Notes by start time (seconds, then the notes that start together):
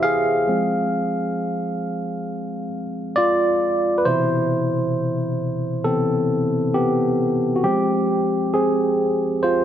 Already playing: E4 G4 C5 E5
0.03 G#4 F5
0.48 F3 G#3 C4
3.16 F4 D5
3.98 B4
4.05 B2 C3 E3 E4 C5
5.84 C3 E3 B3 C4 A4
6.74 B3 G4
7.56 F#4
7.64 F3 G#3 C4 G4
8.54 C4 G#4
9.43 F4 C5